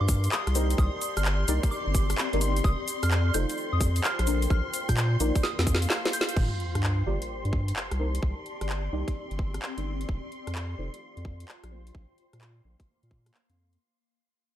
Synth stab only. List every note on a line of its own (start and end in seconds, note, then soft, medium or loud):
0.00 0.53 F4 loud
0.00 0.53 G4 medium
0.00 0.53 A#4 medium
0.00 0.53 D5 loud
0.55 1.46 D#4 medium
0.55 1.46 G4 medium
0.55 1.46 A#4 medium
0.55 1.46 C5 loud
1.48 2.30 D#4 loud
1.48 2.30 G4 medium
1.48 2.30 A#4 medium
1.48 2.30 D5 loud
2.33 2.63 D#4 medium
2.33 2.63 G4 medium
2.33 2.63 A#4 medium
2.33 2.63 D5 medium
3.34 4.25 D#4 loud
3.34 4.25 F4 medium
3.34 4.25 A4 medium
3.34 4.25 C5 loud
4.27 5.18 D4 medium
4.27 5.18 A4 medium
4.27 5.18 A#4 medium
4.27 5.18 C5 loud
5.20 6.02 D#4 loud
5.20 6.02 F4 medium
5.20 6.02 A#4 medium
5.20 6.02 D5 loud
7.06 7.97 F4 loud
7.06 7.97 G4 medium
7.06 7.97 A#4 medium
7.06 7.97 D5 loud
7.99 8.90 D#4 medium
7.99 8.90 G4 medium
7.99 8.90 A#4 medium
7.99 8.90 C5 loud
8.92 9.74 D#4 loud
8.92 9.74 G4 medium
8.92 9.74 A#4 medium
8.92 9.74 D5 loud
9.78 10.08 D#4 medium
9.78 10.08 G4 medium
9.78 10.08 A#4 medium
9.78 10.08 D5 medium
10.78 11.70 D#4 loud
10.78 11.70 F4 medium
10.78 11.70 A4 medium
10.78 11.70 C5 loud
11.71 12.63 D4 medium
11.71 12.63 A4 medium
11.71 12.63 A#4 medium
11.71 12.63 C5 medium
12.64 13.23 D4 loud
12.64 13.23 A4 medium
12.64 13.23 A#4 medium
12.64 13.23 D5 loud
13.26 13.31 D4 medium
13.50 13.54 D4 loud
13.50 13.54 A4 medium
13.50 13.54 A#4 medium
13.50 13.54 C5 loud